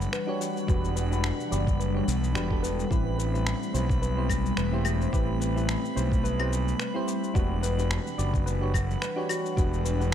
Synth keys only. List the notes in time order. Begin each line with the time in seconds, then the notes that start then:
0.27 D4 F#4 G4 C#5
0.67 D4 F#4 G4 B4
1.10 D4 F#4 G4 B4
1.50 D4 F#4 G4 B4
1.94 D4 F#4 G4 C#5
2.34 D4 F#4 G4 B4
2.50 D4 F#4 G4 A4
2.90 C4 E4 G4 B4
3.33 C4 E4 G4 B4
3.73 C4 E4 G4 B4
4.16 C4 E4 G4 C5
4.72 C4 E4 G4 C5
5.12 C4 E4 G4 B4
5.55 C4 E4 G4 B4
5.95 C4 E4 G4 B4
6.38 C4 E4 G4 C5
6.94 C4 E4 G4 C5
7.34 D4 F#4 G4 B4
7.78 D4 F#4 G4 B4
8.18 D4 F#4 G4 B4
8.61 D4 F#4 G4 C#5
9.16 D4 F#4 G4 C#5
9.57 D4 F#4 G4 B4
9.99 D4 F#4 G4 B4